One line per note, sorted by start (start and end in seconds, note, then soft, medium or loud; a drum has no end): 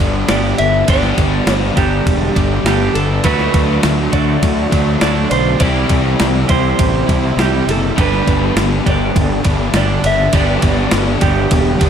0.00 0.23 G1 medium
0.00 0.86 G2 medium
0.00 0.27 G2 medium
0.00 0.86 D3 medium
0.00 0.28 D3 medium
0.00 0.27 G3 medium
0.00 0.87 G3 medium
0.00 0.28 G3 medium
0.00 0.27 B3 medium
0.00 0.87 B3 medium
0.00 0.30 D4 medium
0.00 0.31 D4 medium
0.00 0.90 D4 medium
0.00 0.26 G4 medium
0.00 0.28 D5 medium
0.00 kick medium
0.28 0.52 G1 medium
0.28 0.86 G2 medium
0.28 0.86 D3 medium
0.28 0.86 G3 medium
0.28 0.87 B3 medium
0.28 0.89 D4 medium
0.28 0.87 G4 medium
0.28 0.59 D5 medium
0.28 snare loud
0.28 ride medium
0.58 0.82 G1 medium
0.58 0.89 E5 loud
0.58 ride medium
0.87 1.11 G1 medium
0.87 2.34 G2 medium
0.87 3.23 G2 medium
0.87 2.34 D3 medium
0.87 3.23 D3 medium
0.87 1.75 G3 medium
0.87 1.75 B3 medium
0.87 1.77 D4 medium
0.87 1.75 G4 medium
0.87 1.55 D5 loud
0.87 kick loud
0.87 ride medium
1.03 snare soft
1.18 1.41 G1 medium
1.18 kick medium
1.18 ride medium
1.46 1.70 G1 medium
1.46 snare loud
1.46 ride medium
1.55 1.80 C5 loud
1.76 2.00 G1 medium
1.76 2.64 G3 medium
1.76 2.64 B3 medium
1.76 2.64 D4 medium
1.76 2.63 G4 medium
1.76 2.65 G4 medium
1.76 kick medium
1.76 ride medium
2.06 2.29 E1 medium
2.06 kick loud
2.06 ride medium
2.35 2.59 G1 medium
2.35 2.64 G2 medium
2.35 2.65 D3 medium
2.35 2.64 G3 medium
2.35 2.64 B3 medium
2.35 2.63 D4 medium
2.35 kick medium
2.35 ride medium
2.64 2.88 G1 medium
2.64 3.23 G2 medium
2.64 3.23 D3 medium
2.64 3.23 G3 medium
2.64 3.23 B3 medium
2.64 3.24 D4 medium
2.64 2.95 G4 medium
2.64 snare loud
2.64 ride medium
2.68 3.24 G4 medium
2.95 3.18 G1 medium
2.95 3.25 A4 medium
2.95 ride medium
3.24 3.48 D2 medium
3.24 4.11 D3 medium
3.24 4.11 F#3 medium
3.24 4.12 A3 medium
3.24 4.12 D4 medium
3.24 4.11 F#4 loud
3.24 3.80 B4 medium
3.24 kick loud
3.24 ride medium
3.39 snare soft
3.54 3.77 D2 medium
3.54 kick medium
3.54 ride medium
3.83 4.07 D2 medium
3.83 snare loud
3.83 ride medium
4.12 4.36 D2 medium
4.12 5.00 D3 medium
4.12 5.01 F#3 medium
4.12 5.00 A3 medium
4.12 5.00 D4 medium
4.12 4.99 F#4 medium
4.12 5.01 D5 medium
4.12 kick medium
4.12 ride medium
4.43 4.66 D2 loud
4.43 kick loud
4.43 ride medium
4.71 4.95 D2 medium
4.71 4.99 D3 medium
4.71 5.00 F#3 medium
4.71 5.00 A3 medium
4.71 4.99 D4 medium
4.71 kick medium
4.71 ride medium
5.01 5.25 D2 medium
5.01 5.59 D3 medium
5.01 5.59 F#3 medium
5.01 5.60 A3 medium
5.01 5.60 D4 medium
5.01 5.60 F#4 medium
5.01 5.31 D5 medium
5.01 snare loud
5.01 ride medium
5.31 5.54 B1 medium
5.31 5.61 C5 medium
5.31 ride medium
5.60 5.84 C2 medium
5.60 6.47 C3 medium
5.60 6.48 E3 medium
5.60 6.49 G3 medium
5.60 7.96 C4 medium
5.60 7.06 C4 medium
5.60 6.48 E4 medium
5.60 6.48 G4 medium
5.60 6.49 D5 loud
5.60 kick loud
5.60 ride medium
5.89 6.13 C2 medium
5.89 kick medium
5.89 ride medium
6.20 6.43 C2 medium
6.20 snare loud
6.20 ride medium
6.48 6.73 C2 medium
6.48 7.36 C3 medium
6.48 7.37 E3 medium
6.48 7.39 G3 medium
6.48 7.36 E4 medium
6.48 7.39 G4 medium
6.48 7.34 C5 medium
6.48 kick medium
6.48 ride medium
6.79 7.02 A1 medium
6.79 kick loud
6.79 ride medium
7.06 7.32 C2 medium
7.06 7.35 C3 medium
7.06 7.37 G3 medium
7.06 7.36 C4 medium
7.06 7.35 E4 medium
7.06 kick medium
7.06 ride medium
7.37 7.60 C2 medium
7.37 7.95 C3 medium
7.37 7.95 E3 medium
7.37 7.97 G3 medium
7.37 7.96 C4 medium
7.37 7.96 E4 medium
7.37 7.98 G4 medium
7.37 7.69 G4 medium
7.37 snare loud
7.37 ride medium
7.67 7.90 F#1 medium
7.67 7.99 A4 medium
7.67 ride medium
7.96 8.21 G1 medium
7.96 8.88 G2 medium
7.96 8.84 D3 medium
7.96 8.87 G3 medium
7.96 8.86 B3 medium
7.96 8.86 D4 medium
7.96 8.86 G4 medium
7.96 kick loud
7.96 ride medium
8.01 8.54 B4 medium
8.13 snare soft
8.28 8.50 G1 medium
8.28 kick medium
8.28 ride medium
8.56 8.79 G1 medium
8.56 snare loud
8.56 ride medium
8.86 9.09 G1 medium
8.86 9.73 G2 medium
8.86 9.74 D3 medium
8.86 9.74 G3 medium
8.86 9.73 B3 medium
8.86 9.75 D4 medium
8.86 9.73 G4 medium
8.86 9.76 D5 medium
8.86 kick medium
8.86 ride medium
9.16 9.39 G1 medium
9.16 kick loud
9.16 ride medium
9.44 9.68 G1 medium
9.44 9.73 G2 medium
9.44 9.73 D3 medium
9.44 9.73 G3 medium
9.44 9.73 B3 medium
9.44 9.77 D4 medium
9.44 kick medium
9.44 ride medium
9.74 9.97 G1 medium
9.74 10.32 G2 medium
9.74 10.32 D3 medium
9.74 10.32 G3 medium
9.74 10.33 B3 medium
9.74 10.35 D4 medium
9.74 10.33 G4 medium
9.74 10.06 D5 medium
9.74 snare loud
9.74 ride medium
10.04 10.27 G1 medium
10.04 10.34 E5 medium
10.04 ride medium
10.33 10.57 G1 medium
10.33 11.20 G2 medium
10.33 11.21 D3 medium
10.33 11.21 G3 medium
10.33 11.21 B3 medium
10.33 11.22 D4 medium
10.33 11.21 G4 medium
10.33 11.26 D5 loud
10.33 kick loud
10.33 ride medium
10.62 10.86 G1 medium
10.62 kick medium
10.62 ride medium
10.91 11.15 G1 medium
10.91 snare loud
10.91 ride medium
11.21 11.45 G1 medium
11.21 11.90 G2 medium
11.21 11.90 D3 medium
11.21 11.90 G3 medium
11.21 11.90 B3 medium
11.21 11.90 D4 medium
11.21 11.90 G4 medium
11.21 kick medium
11.21 ride medium
11.51 11.75 E1 medium
11.51 kick loud
11.51 ride medium
11.80 11.90 G1 medium
11.80 11.90 G2 medium
11.80 11.90 D3 medium
11.80 11.90 G3 medium
11.80 11.90 B3 medium
11.80 11.90 D4 medium
11.80 kick medium
11.80 ride medium